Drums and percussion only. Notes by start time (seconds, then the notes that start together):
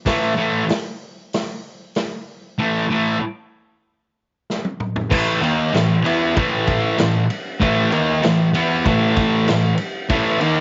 0.06 kick, snare, open hi-hat
0.69 snare, open hi-hat
1.33 snare, open hi-hat
1.95 snare, open hi-hat
4.50 snare
4.65 high tom
4.80 mid tom
4.96 floor tom
5.11 kick, crash
5.43 ride
5.74 snare, ride
6.06 ride
6.37 kick, ride
6.67 kick, ride
6.98 snare, ride
7.30 ride
7.62 kick, ride
7.92 ride
8.23 snare, ride
8.54 ride
8.86 kick, ride
9.17 kick, ride
9.48 snare, ride
9.78 ride
10.09 kick, ride
10.41 ride